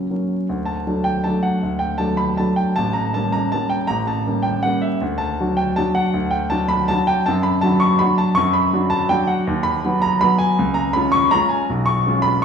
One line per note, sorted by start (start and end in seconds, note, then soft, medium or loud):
0.00 0.12 C#1 soft
0.00 0.12 C#2 soft
0.00 0.11 F#3 soft
0.00 0.11 A#3 soft
0.00 0.11 C#4 soft
0.00 0.30 F#5 medium
0.11 0.46 F#3 soft
0.11 0.46 A#3 soft
0.11 0.47 C#4 soft
0.49 0.86 D2 medium
0.65 1.05 A5 medium
0.87 1.22 F#3 soft
0.87 1.22 A3 soft
0.87 1.22 D4 soft
1.04 1.25 G5 medium
1.24 1.59 F#3 soft
1.24 1.60 A3 soft
1.24 1.60 D4 soft
1.24 1.44 A5 medium
1.43 1.81 F#5 medium
1.63 1.99 D2 medium
1.79 1.99 G5 medium
1.98 2.35 F#3 soft
1.98 2.36 A3 soft
1.98 2.36 D4 soft
1.98 2.18 A5 medium
2.17 2.38 B5 medium
2.37 2.74 F#3 soft
2.37 2.74 A3 soft
2.37 2.74 D4 soft
2.37 2.58 A5 medium
2.56 2.76 G5 medium
2.76 3.14 A1 medium
2.76 2.95 A5 loud
2.93 3.13 A#5 medium
3.14 3.49 G3 soft
3.14 3.50 A#3 soft
3.14 3.50 C#4 soft
3.14 3.33 A5 medium
3.32 3.52 A#5 medium
3.52 3.87 G3 soft
3.52 3.87 A#3 soft
3.52 3.87 C#4 soft
3.52 3.71 A5 loud
3.69 3.89 G5 medium
3.87 4.25 A1 medium
3.87 4.07 A#5 loud
4.07 4.45 A5 medium
4.26 4.61 G3 soft
4.26 4.61 A#3 soft
4.26 4.62 C#4 soft
4.43 4.64 G5 medium
4.63 4.99 G3 soft
4.63 4.99 A#3 soft
4.63 4.99 C#4 soft
4.63 4.83 F#5 loud
4.82 5.01 E5 medium
5.01 5.38 D2 medium
5.18 5.57 A5 loud
5.40 5.74 F#3 soft
5.40 5.74 D4 soft
5.40 5.75 F#4 medium
5.57 5.77 G5 medium
5.76 6.11 F#3 medium
5.76 6.11 D4 medium
5.76 6.11 F#4 medium
5.76 5.96 A5 loud
5.95 6.32 F#5 medium
6.14 6.50 D2 medium
6.31 6.50 G5 medium
6.50 6.86 F#3 medium
6.50 6.87 D4 medium
6.50 6.87 F#4 medium
6.50 6.70 A5 loud
6.69 6.89 B5 loud
6.88 7.23 F#3 medium
6.88 7.24 D4 medium
6.88 7.24 F#4 medium
6.88 7.08 A5 loud
7.07 7.26 G5 loud
7.26 7.62 F#2 medium
7.26 7.44 A5 loud
7.43 7.62 B5 loud
7.61 7.97 F#3 medium
7.61 7.97 D4 medium
7.61 7.98 F#4 medium
7.61 7.81 A5 loud
7.80 8.00 C#6 loud
7.99 8.34 F#3 medium
7.99 8.34 D4 medium
7.99 8.34 F#4 medium
7.99 8.18 B5 loud
8.18 8.36 A5 loud
8.35 8.72 F#2 medium
8.35 8.53 C#6 loud
8.53 8.91 B5 medium
8.73 9.07 F#3 medium
8.73 9.07 D4 medium
8.73 9.07 F#4 medium
8.90 9.09 A5 loud
9.09 9.44 F#3 medium
9.09 9.44 D4 medium
9.09 9.44 F#4 medium
9.09 9.28 G5 loud
9.27 9.46 F#5 medium
9.47 9.83 D#2 medium
9.63 10.02 B5 loud
9.85 10.18 F#3 medium
9.85 10.18 B3 medium
9.85 10.19 F#4 medium
10.02 10.21 A#5 loud
10.21 10.55 F#3 medium
10.21 10.55 B3 medium
10.21 10.55 F#4 medium
10.21 10.40 B5 loud
10.38 10.76 G#5 loud
10.59 10.94 C#2 medium
10.74 10.94 A#5 loud
10.93 11.29 G#3 medium
10.93 11.29 C#4 medium
10.93 11.30 F4 medium
10.93 11.13 B5 loud
11.12 11.32 C#6 loud
11.31 11.66 G#3 medium
11.31 11.66 C#4 medium
11.31 11.66 F4 medium
11.31 11.51 A#5 loud
11.49 11.68 G#5 medium
11.70 12.04 B1 medium
11.86 12.23 C#6 loud
12.07 12.40 G#3 medium
12.07 12.40 C#4 medium
12.07 12.41 F4 medium
12.22 12.42 B5 loud